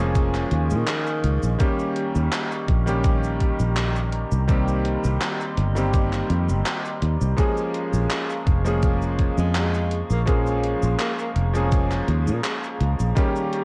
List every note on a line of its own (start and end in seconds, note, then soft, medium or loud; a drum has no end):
0.00 0.44 F1 loud
0.00 1.62 F3 medium
0.00 1.61 G#3 medium
0.00 1.60 A#3 medium
0.00 1.61 C#4 medium
0.00 1.56 G#4 medium
0.00 1.62 G#4 medium
0.00 1.56 F5 medium
0.00 1.57 G#5 medium
0.00 4.45 C#6 medium
0.15 kick loud
0.15 closed hi-hat medium
0.15 cabasa soft
0.35 clap soft
0.35 cabasa soft
0.51 0.72 D#2 medium
0.51 closed hi-hat medium
0.70 0.83 A#2 medium
0.70 1.67 D#3 loud
0.70 cabasa medium
0.87 clap loud
0.87 closed hi-hat medium
0.87 cabasa soft
1.07 cabasa soft
1.23 1.38 C#2 medium
1.23 closed hi-hat medium
1.43 1.55 A#1 loud
1.43 cabasa medium
1.58 2.82 D#3 medium
1.58 2.83 G3 medium
1.58 2.83 A#3 medium
1.58 2.83 C#4 medium
1.58 7.34 G4 medium
1.58 2.84 G4 medium
1.58 7.34 D#5 medium
1.58 7.34 A#5 medium
1.58 kick loud
1.58 closed hi-hat medium
1.58 cabasa soft
1.79 cabasa soft
1.96 closed hi-hat medium
2.15 2.28 D#2 loud
2.15 cabasa medium
2.32 clap loud
2.32 closed hi-hat medium
2.32 cabasa soft
2.52 cabasa soft
2.68 3.51 A#1 loud
2.68 kick loud
2.68 closed hi-hat medium
2.86 4.44 D#3 medium
2.86 4.45 G3 medium
2.86 4.45 A#3 medium
2.86 4.45 C#4 medium
2.86 4.46 G4 medium
2.86 closed hi-hat soft
2.86 cabasa medium
3.04 kick loud
3.04 closed hi-hat medium
3.04 cabasa soft
3.24 cabasa soft
3.40 kick medium
3.40 closed hi-hat medium
3.60 4.24 A#1 loud
3.60 cabasa medium
3.77 clap loud
3.77 closed hi-hat medium
3.77 cabasa soft
3.96 cabasa soft
4.13 closed hi-hat medium
4.32 4.96 C2 loud
4.32 cabasa medium
4.48 5.71 D#3 medium
4.48 5.72 G3 medium
4.48 5.72 A#3 medium
4.48 5.73 C4 medium
4.48 5.73 G4 medium
4.48 7.35 C6 medium
4.48 kick loud
4.48 closed hi-hat medium
4.48 cabasa soft
4.68 cabasa soft
4.85 closed hi-hat medium
5.04 5.17 C2 loud
5.04 cabasa medium
5.21 clap loud
5.21 closed hi-hat medium
5.21 cabasa soft
5.41 cabasa soft
5.58 6.22 G1 loud
5.58 closed hi-hat medium
5.75 7.33 D#3 medium
5.75 7.34 G3 medium
5.75 7.34 A#3 medium
5.75 7.34 C4 medium
5.75 7.35 G4 medium
5.75 closed hi-hat soft
5.75 cabasa medium
5.94 kick loud
5.94 closed hi-hat medium
5.94 cabasa soft
6.13 clap soft
6.13 cabasa soft
6.30 6.51 F2 medium
6.30 closed hi-hat medium
6.49 6.61 G1 medium
6.49 cabasa medium
6.66 clap loud
6.66 closed hi-hat medium
6.66 cabasa soft
6.85 cabasa soft
7.02 7.16 D#2 medium
7.02 closed hi-hat medium
7.21 7.34 C2 loud
7.21 cabasa medium
7.37 8.61 F3 medium
7.37 8.61 G#3 medium
7.37 8.61 A#3 medium
7.37 8.62 C#4 medium
7.37 13.13 G#4 medium
7.37 8.62 G#4 medium
7.37 13.12 F5 medium
7.37 13.64 A#5 medium
7.37 13.13 C#6 medium
7.37 kick loud
7.37 closed hi-hat medium
7.37 cabasa soft
7.57 cabasa soft
7.74 closed hi-hat medium
7.93 8.06 A#1 loud
7.93 cabasa medium
8.11 clap loud
8.11 closed hi-hat medium
8.11 cabasa soft
8.30 cabasa soft
8.47 9.30 F1 loud
8.47 kick loud
8.47 closed hi-hat medium
8.64 10.23 F3 medium
8.64 10.23 G#3 medium
8.64 10.23 A#3 medium
8.64 10.24 C#4 medium
8.64 10.24 G#4 medium
8.64 closed hi-hat soft
8.64 cabasa medium
8.83 kick loud
8.83 closed hi-hat medium
8.83 cabasa soft
9.02 cabasa soft
9.19 kick medium
9.19 closed hi-hat medium
9.38 10.02 F2 loud
9.38 9.52 G#3 medium
9.38 cabasa medium
9.55 9.99 G#3 medium
9.55 clap loud
9.55 closed hi-hat medium
9.55 cabasa soft
9.74 cabasa soft
9.91 closed hi-hat medium
10.10 10.74 A#1 medium
10.10 10.22 A#3 medium
10.10 cabasa medium
10.25 11.50 F3 medium
10.25 11.50 G#3 medium
10.25 11.50 A#3 medium
10.25 10.40 A#3 medium
10.25 11.51 C#4 medium
10.25 11.51 G#4 medium
10.25 kick loud
10.25 closed hi-hat medium
10.25 cabasa soft
10.47 cabasa soft
10.64 closed hi-hat medium
10.83 10.95 A#1 loud
10.83 cabasa medium
11.00 11.12 A#3 medium
11.00 clap loud
11.00 closed hi-hat medium
11.00 cabasa soft
11.19 11.30 A#3 medium
11.19 cabasa soft
11.36 12.01 F1 loud
11.36 closed hi-hat medium
11.53 13.12 F3 medium
11.53 13.12 G#3 medium
11.53 13.12 A#3 medium
11.53 13.13 C#4 medium
11.53 13.13 G#4 medium
11.53 closed hi-hat soft
11.53 cabasa medium
11.72 kick loud
11.72 closed hi-hat medium
11.72 cabasa soft
11.91 clap soft
11.91 cabasa soft
12.08 12.29 D#2 loud
12.08 closed hi-hat medium
12.27 12.39 A#2 medium
12.27 cabasa medium
12.44 clap loud
12.44 closed hi-hat medium
12.44 cabasa soft
12.64 cabasa soft
12.80 12.94 C#2 medium
12.80 closed hi-hat medium
13.00 13.12 A#1 loud
13.00 cabasa medium
13.15 13.64 D#3 medium
13.15 13.64 G3 medium
13.15 13.64 A#3 medium
13.15 13.64 C#4 medium
13.15 13.64 G4 medium
13.15 13.64 D#5 medium
13.15 13.64 C#6 medium
13.15 kick loud
13.15 closed hi-hat medium
13.15 cabasa soft
13.36 cabasa soft
13.53 closed hi-hat medium